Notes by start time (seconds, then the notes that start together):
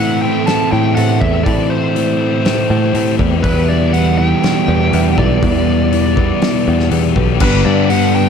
Already playing: A2 E3 A3 C4 E4 F#5
0.00 E3 A3 C4 E4
0.22 A3 C4 E4 G5
0.46 A2 E3 A3 C4 E4 A5, snare, open hi-hat
0.72 A2 G4 G5
0.95 A2 E3 A3 C4 E4 F#5, open hi-hat
1.21 E2 G4 E5, kick
1.44 A2 E3 A3 C4 D5, kick, open hi-hat
1.48 E4
1.70 A3 C5
1.95 E3 A3 C4 E4, open hi-hat
2.20 A3 C4 E4
2.45 A2 E3 A3 C4 E4, snare, open hi-hat
2.70 A2 G4
2.94 A2 E3 A3 C4 E4, open hi-hat
3.19 E2 G4, kick
3.43 E2 B2 E3 G3 B3 E4 B4, kick, open hi-hat
3.69 B3 D5
3.93 E3 G3 B3 E4 F#5, open hi-hat
4.18 E3 G3 B3 E4 G5
4.42 E2 B2 E3 G3 B3 D4 E4, snare, open hi-hat
4.68 E2 G4
4.91 E2 E3 G3 B3 D4 E4, open hi-hat
5.18 B1 G4 D5, kick
5.41 E2 B2 E3 G3 B3 E4, kick, open hi-hat
5.68 B3
5.91 E3 G3 B3 E4, open hi-hat
6.16 E3 G3 B3 E4, kick
6.41 E2 B2 E3 G3 B3 D4 E4, snare, open hi-hat
6.67 E2 G4
6.80 snare
6.90 E2 E3 G3 B3 D4 E4, open hi-hat
7.16 B1 G4, kick
7.40 G1 G2 D3 G3 B3 D4 G4 B4, kick, crash
7.65 G2 G3 B3 D4 G4 D5
7.89 G3 B3 D4 G4 F#5, open hi-hat
8.15 D4 G5